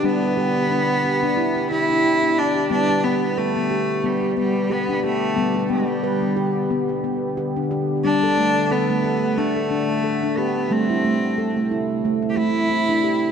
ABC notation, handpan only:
X:1
M:4/4
L:1/16
Q:"Swing 16ths" 1/4=90
K:G
V:1 name="Handpan"
D2 G2 D2 G D E D G D E D2 G | B, G B,2 B B, G2 B, G B,2 G D G2 | B, G B,2 B B, G2 B, G B,2 G D G2 | D A A,2 A A, A2 D A D2 A D G2 |
A, E A,2 A A, E2 A, E A,2 E D G2 |]
V:2 name="Handpan" clef=bass
G,16 | G,16 | G,16 | G,16 |
G,16 |]